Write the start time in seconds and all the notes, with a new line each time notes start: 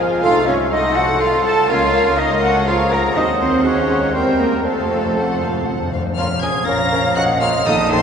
Already playing: A#1 F3 A#4 C5 F5
0.00 F4
0.22 C2 A3 D#4 F4 A4 F5
0.46 C#4 C#5
0.70 D#4 A4 C5 D#5 F#5
0.95 F#4 F#5
1.19 F4 A4 C5 F5
1.44 A4 A5
1.68 C#2 A#3 C#4 F4 A#4 C#5 F5
1.92 C#5
2.17 A#3 D#4 C#5 D#5
2.41 F#4 F#5
2.65 F3 F4 G#4 A#4 C#5 F5
2.91 A#4 A#5
3.15 D#2 F#3 C4 D#4 C5 D#5 F#5
3.39 C4 C5
3.63 G#3 C#4 F#4 C#5 F#5
3.90 G#4
4.13 E2 G3 C4 A#4 C5 G5
4.40 A#3 A#4
4.58 A#3
4.63 F2 F3 A3 C4 A4 C5 F5 A5
4.73 F2
4.81 F2
4.88 F2
4.96 F2
5.03 F2
5.11 F2
5.17 F2 F#5
5.26 F2
5.34 F2
5.41 F2 F5
5.50 F2
5.57 F2
5.65 F2 F#5
5.73 F2
5.80 F2
5.87 F2
5.93 F2 F5
6.03 F2
6.17 A#1 A#2 F3 C#4 F4 A#4 F5 F6
6.42 C#4 G#4 A#4 G#5 G#6
6.66 A#1 A#2 C#4 A#4 C#5 A#5 A#6
6.92 C#4 A#4
7.16 A#1 A#2 C#4 F#4 A#4 D#5 F#5 F#6
7.40 C#4 F4 A#4 F5 F6
7.65 A#1 A#2 A3 D#4 A4 D#5 A5 D#6
7.89 C4 D#4 A4 C5 C6